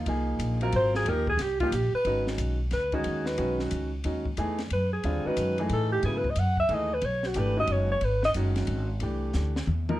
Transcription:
0.06 upright bass C2, upright piano F3 A#3 D#4 G#4, ride
0.39 upright bass A#1, hi-hat pedal, ride
0.61 upright piano F#3 C4 F4 A#4, ride
0.72 upright bass G#1, alto saxophone C5, ride
0.95 alto saxophone G#4, snare
1.05 upright bass D#2, upright piano F3 A#3 D#4 G4, alto saxophone A#4, ride
1.27 alto saxophone G#4, kick
1.37 upright bass C2, snare, hi-hat pedal, ride
1.42 alto saxophone G4
1.60 upright piano F3 A#3 D#4 G4, alto saxophone F4, kick, ride
1.72 upright bass A#1, alto saxophone G4, hi-hat pedal, ride
1.93 alto saxophone B4, muted upright bass stroke
2.05 upright bass G#1, upright piano D#3 G#3 C#4 F#4, ride
2.27 snare
2.38 upright bass B1, hi-hat pedal, ride
2.71 upright bass D2, alto saxophone B4, snare, ride
2.92 upright piano D#3 G#3 C#4 F#4, alto saxophone G#4, kick, ride
3.04 upright bass D#2, ride
3.26 alto saxophone B4, snare
3.38 upright bass B1, upright piano D#3 G#3 C#4 F#4, ride
3.59 snare
3.71 upright bass C#2, hi-hat pedal, ride
4.04 upright bass D#2, upright piano D#3 G#3 C#4 F#4, ride
4.25 kick
4.37 upright bass E2, upright piano E3 A3 D#4 G#4, hi-hat pedal, ride
4.58 snare, ride
4.70 upright bass F#2, alto saxophone B4, ride
4.93 alto saxophone G#4
5.04 upright bass D#2, upright piano D3 G3 C4 F4, ride
5.25 upright piano D#3 G#3 C#4 F#4, alto saxophone B4, muted upright bass stroke
5.37 upright bass F#2, hi-hat pedal, ride
5.58 upright piano E3 A3 D#4 G#4, ride
5.69 upright bass A2, alto saxophone A4, ride
5.92 alto saxophone G4
6.03 upright bass G#2, upright piano C#3 F#3 B3 E4, alto saxophone G#4, ride
6.17 alto saxophone B4
6.24 kick
6.30 alto saxophone D#5
6.36 upright bass F#2, alto saxophone F#5, hi-hat pedal, ride
6.57 alto saxophone E5, kick
6.69 upright bass D#2, upright piano E3 A3 D#4 G#4, ride
6.74 alto saxophone D#5
6.94 alto saxophone B4
7.01 upright bass B1, alto saxophone C#5, ride
7.23 alto saxophone F#4, snare
7.34 upright bass G#1, upright piano E3 A3 D4 G4, hi-hat pedal, ride
7.39 alto saxophone B4
7.57 upright piano D#3 G#3 C#4 F#4, alto saxophone D#5
7.67 upright bass F#1, ride
7.72 alto saxophone C#5
7.92 alto saxophone C#5
8.01 upright bass G#1, alto saxophone B4, ride
8.23 alto saxophone D#5, snare
8.34 upright bass F#1, upright piano D#3 G#3 C#4 F#4, hi-hat pedal, ride
8.56 snare, ride
8.67 upright bass G#1, ride
9.00 upright bass C2, upright piano E3 A3 D4 G4, ride
9.33 upright bass D2, snare, hi-hat pedal
9.56 snare
9.67 upright bass E2, mid tom
9.89 upright piano F3 A#3 D#4 A#4, mid tom

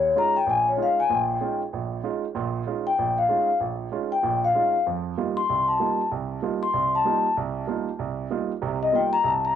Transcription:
Already playing: grand piano D#2, vibraphone C#5
0.16 grand piano G#3 C#4 D#4 F4, vibraphone A#5
0.37 vibraphone G5
0.46 grand piano A#1, vibraphone G#5
0.69 vibraphone C#5
0.77 grand piano G#3 C#4 D#4 F4
0.83 vibraphone F5
1.00 vibraphone G#5
1.10 grand piano A#1 A#2, vibraphone G5
1.41 grand piano G#3 C#4 D#4 F4
1.73 grand piano A#1
2.04 grand piano G#3 C#4 D#4 F4
2.35 grand piano A#1 A#2
2.67 grand piano G#3 C#4 D#4 F4
2.87 vibraphone G5
2.98 grand piano A#1
3.18 vibraphone F5
3.29 grand piano G#3 C#4 D#4 F4
3.60 grand piano A#1
3.92 grand piano G#3 C#4 D#4 F4
4.12 vibraphone G5
4.23 grand piano A#1 A#2
4.45 vibraphone F5
4.54 grand piano G#3 C#4 D#4 F4
4.86 grand piano F2 F3
5.17 grand piano G3 A#3 D#4 F4
5.37 vibraphone C6
5.49 grand piano C2
5.68 vibraphone A5
5.80 grand piano G3 A#3 D#4 F4
6.11 grand piano C2
6.42 grand piano G3 A#3 D#4 F4
6.63 vibraphone C6
6.73 grand piano C2
6.95 vibraphone A5
7.05 grand piano G3 A#3 D#4 F4
7.37 grand piano C2
7.67 grand piano G3 A#3 D#4 F4
7.99 grand piano C2
8.30 grand piano G3 A#3 D#4 F4
8.62 grand piano C2 C3
8.83 vibraphone D#5
8.93 grand piano G3 A#3 D#4 F4, vibraphone G5
9.13 vibraphone A#5
9.24 grand piano C2, vibraphone A5
9.45 vibraphone A#5

